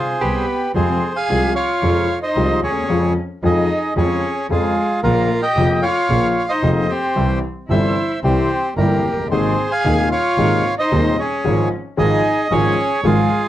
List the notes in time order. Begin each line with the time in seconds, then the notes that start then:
Already playing: C3 F4 G#4 C5
0.21 C2 C3 B3 G4 B4
0.74 F2 C3 F3 G#3 C4 F4 G#4 C5
1.16 G#4 F5 G#5
1.29 C2 C3 F3 G#3 F4
1.55 F4 C#5 F5
1.83 F2 C3 F3 G#3 F4
2.23 D#4 C5 D#5
2.36 C2 C3 F3 G#3 F4
2.63 D#2 C#4 G#4 C#5
2.70 D2
2.76 D#2
2.83 E2
2.89 F2 C#3 F3 G#3 F4
3.43 F2 C#3 F3 G#3 D#4 F4 G#4 D#5
3.96 F2 C#3 F3 G#3 C#4 F4 G#4 C#5
4.50 F2 C#3 F3 G#3 F4 G#4
5.03 A#1 A#2 C#3 F3 A#3 F4 A#4
5.42 G4 D#5 G5
5.57 F1 F2 C#3 F3 A#3 F4
5.82 F4 C#5 F5
6.10 A#1 A#2 C#3 F3 A#3 F4
6.49 D#4 C5 D#5
6.63 F1 F2 C#3 F3 A#3 F4
6.89 C4 G4 C5
7.16 C2 C3 E3 G3 E4
7.68 G1 G2 C3 E3 G3 E4 C5 E5
8.23 C2 C3 E3 G3 C4 E4 G4 C5
8.77 G1 G2 C3 E3 G3 A#3 E4 G4 A#4
9.04 F#1
9.12 F1
9.19 F#1
9.25 G1
9.30 G#1 G#2 C3 G#3 A#3 C4 D#4 G#4 C5
9.70 G#4 F5 G#5
9.84 D#1 D#2 C3 G#3 A#3 D#4
10.10 F4 C#5 F5
10.37 G#1 G#2 C3 G#3 A#3 D#4
10.77 D#4 C5 D#5
10.91 D#1 D#2 C3 G#3 A#3 D#4
11.18 C#4 G#4 C#5
11.44 G#1 G#2 C#3 F3 G#3 F4
11.97 G#1 G#2 C#3 F3 G#3 D#4 F4 G#4 D#5
12.51 G#1 G#2 C#3 F3 G#3 C#4 F4 G#4 C#5
13.04 G#1 G#2 C#3 F3 G#3 F4 G#4